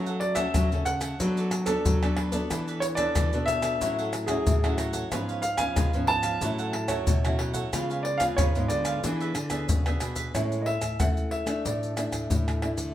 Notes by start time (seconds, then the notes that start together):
Already playing: F#3 A3 C#4 A4
0.06 A4 C#5 F#5, pandeiro, maracas
0.20 D5, muted cavaquinho stroke, pandeiro
0.35 A3 C#4 A4 C#5 E5 F#5, pandeiro, tamborim, maracas, surdo
0.54 C#3 F#3 F#4 A4 C#5 F#5, pandeiro, tamborim, maracas, surdo
0.72 C#3 A3 C#4 A4, pandeiro, maracas, surdo
0.85 C#3 F#5, pandeiro, maracas
1.01 A4 C#5 F#5, pandeiro, tamborim, maracas
1.20 F#3 B3 D4 A4 B4 D5, pandeiro, maracas, surdo
1.37 A4 B4 D5, pandeiro, maracas
1.51 muted cavaquinho stroke, pandeiro, tamborim, maracas
1.66 B3 D4 A4 B4 D5, pandeiro, tamborim, maracas, surdo
1.85 F#3, pandeiro, maracas, surdo
2.02 B3 D4 A4 B4 D5, pandeiro, tamborim, maracas
2.17 D4 A4 B4 D5, pandeiro, tamborim
2.32 B3 D4 A4 B4 D5, pandeiro, maracas, surdo
2.50 E3 E4 A4 B4 D5, pandeiro, tamborim, maracas, surdo
2.67 A4 B4 D5, pandeiro, maracas
2.80 C#5, muted cavaquinho stroke, pandeiro, maracas
2.95 B3 D4 A4 B4 D5, pandeiro, tamborim, maracas, surdo
3.15 B2 E3 E4 A4 B4 D5, pandeiro, tamborim, maracas, surdo
3.33 B2 B3 D4 A4, pandeiro, maracas, surdo
3.46 B2 E5, pandeiro, maracas
3.62 A4 B4 D5, pandeiro, tamborim, maracas
3.81 A2 F#3 C#4 E4 F#4 A4 C#5 F#5, pandeiro, maracas, surdo
3.98 A4 C#5 F#5, pandeiro, maracas
4.13 muted cavaquinho stroke, pandeiro, tamborim, maracas
4.26 F#3 C#4 E4 G#4 C#5 F#5, pandeiro, tamborim, maracas, surdo
4.47 A2 E3, pandeiro, maracas, surdo
4.64 F#3 C#4 E4 A4 C#5 F#5, pandeiro, tamborim, maracas
4.78 F#4 A4 C#5 F#5, pandeiro, tamborim, maracas
4.93 A4 C#5 F#5, pandeiro, maracas, surdo
5.12 G#2 F3 B3 C#4 F4 B4 C#5 F5, pandeiro, tamborim, maracas, surdo
5.29 B4 C#5 F5, pandeiro, maracas
5.42 F5, muted cavaquinho stroke, pandeiro, maracas
5.57 F3 B3 C#4 B4 C#5 F5 G#5, pandeiro, tamborim, maracas, surdo
5.76 G#2 G#3 F4 B4 C#5 F5, pandeiro, tamborim, maracas, surdo
5.93 G#2 F3 B3 C#4, pandeiro, maracas, surdo
6.07 G#2 A5, pandeiro
6.23 B4 C#5 F5, pandeiro, tamborim, maracas
6.41 A2 F#3 C#4 E4 A4 C#5 F#5, pandeiro, maracas, surdo
6.59 A4 C#5 F#5, pandeiro, maracas
6.73 muted cavaquinho stroke, pandeiro, tamborim
6.88 F#3 C#4 E4 A4 C#5 F#5, pandeiro, tamborim, maracas, surdo
7.07 A2 B2, pandeiro, maracas, surdo
7.25 F#3 C#4 E4 A4 C#5 F#5, pandeiro, tamborim, maracas
7.39 E4 A4 C#5 F#5, pandeiro, tamborim, surdo
7.53 A4 C#5 F#5, pandeiro, maracas, surdo
7.72 C#3 G#3 B3 F4 B4 C#5 F5, pandeiro, tamborim, maracas, surdo
7.90 B4 C#5 F5, pandeiro, maracas
8.03 D5, muted cavaquinho stroke, pandeiro
8.18 G#3 B3 F4 B4 C#5 F5, pandeiro, tamborim, maracas, surdo
8.37 G#2 C#3 F4 B4 C#5 F5, pandeiro, tamborim, maracas, surdo
8.55 G#2 G#3 B3 F4, pandeiro, maracas, surdo
8.68 D3 D5, pandeiro, maracas
8.85 B4 C#5 F5, pandeiro, tamborim, maracas
9.04 E3 B3 D4 G#4 B4 E5, pandeiro, maracas, surdo
9.21 G#4 B4 E5, pandeiro, maracas
9.35 D3, muted cavaquinho stroke, pandeiro, tamborim, maracas
9.50 B3 D4 G#4 B4 E5, pandeiro, tamborim, maracas, surdo
9.69 B2 C#3, pandeiro, maracas, surdo
9.86 B3 D4 G#4 B4 E5, pandeiro, tamborim, maracas
10.00 B2 D4 G#4 B4 E5, pandeiro, tamborim, maracas, surdo
10.16 G#4 B4 E5, pandeiro, maracas, surdo
10.34 A2 G#3 C#4 E4 C#5, pandeiro, tamborim, maracas, surdo
10.52 pandeiro, maracas
10.62 D#5
10.66 E5, pandeiro
10.81 A2, pandeiro, tamborim, maracas, surdo
11.00 E3 A3 C#4 E4 F#5, pandeiro, tamborim, maracas, surdo
11.17 pandeiro, maracas, surdo
11.31 E5, pandeiro
11.46 A3 D4 E4, pandeiro, tamborim, maracas
11.65 A2 D5, pandeiro, maracas, surdo
11.83 pandeiro, maracas
11.96 A3 D4 E4, pandeiro, tamborim, maracas
12.12 A2, pandeiro, tamborim, maracas, surdo
12.30 A2, pandeiro, maracas, surdo
12.48 pandeiro, tamborim, maracas
12.62 A3 D4 E4, pandeiro, tamborim
12.77 D3, pandeiro, maracas, surdo